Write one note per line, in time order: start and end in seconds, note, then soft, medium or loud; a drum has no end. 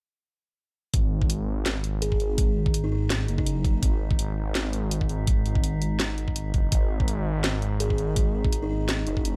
0.94 1.65 G#1 medium
0.94 9.36 D#4 medium
0.94 kick loud
0.94 closed hi-hat medium
1.22 kick loud
1.30 closed hi-hat medium
1.66 2.19 G#1 medium
1.66 snare loud
1.66 closed hi-hat medium
1.84 closed hi-hat soft
2.02 2.24 G#4 medium
2.02 closed hi-hat medium
2.12 kick medium
2.20 3.27 G#1 medium
2.20 closed hi-hat soft
2.38 kick loud
2.38 closed hi-hat medium
2.66 kick loud
2.74 closed hi-hat medium
2.84 2.89 D#4 medium
2.92 2.99 D#4 medium
3.10 snare loud
3.10 closed hi-hat medium
3.28 3.81 F#1 loud
3.28 closed hi-hat soft
3.38 3.74 D#4 medium
3.38 kick medium
3.47 closed hi-hat medium
3.65 kick loud
3.65 closed hi-hat soft
3.83 4.54 G#1 medium
3.83 kick loud
3.83 closed hi-hat medium
4.11 kick loud
4.19 closed hi-hat medium
4.55 5.08 G#1 medium
4.55 snare loud
4.55 closed hi-hat medium
4.73 closed hi-hat soft
4.91 closed hi-hat medium
5.01 kick medium
5.09 5.44 G#1 medium
5.09 closed hi-hat soft
5.27 kick loud
5.27 closed hi-hat medium
5.46 6.53 G#1 loud
5.46 closed hi-hat soft
5.55 kick loud
5.64 closed hi-hat medium
5.82 closed hi-hat soft
6.00 snare loud
6.00 closed hi-hat medium
6.18 closed hi-hat soft
6.28 kick medium
6.36 closed hi-hat medium
6.54 6.71 F#1 medium
6.54 kick loud
6.54 closed hi-hat soft
6.72 7.43 G#1 medium
6.72 kick loud
6.72 closed hi-hat medium
7.00 kick loud
7.08 closed hi-hat medium
7.44 7.97 G#1 medium
7.44 snare loud
7.44 closed hi-hat medium
7.62 closed hi-hat soft
7.80 8.02 G#4 medium
7.80 closed hi-hat medium
7.90 kick medium
7.98 9.06 G#1 loud
7.98 closed hi-hat soft
8.16 kick loud
8.16 closed hi-hat medium
8.45 kick loud
8.53 closed hi-hat medium
8.63 8.68 D#4 medium
8.71 8.77 D#4 medium
8.89 snare loud
8.89 closed hi-hat medium
9.07 9.36 F#1 loud
9.07 9.35 D#4 medium
9.07 closed hi-hat soft
9.17 kick medium
9.25 closed hi-hat medium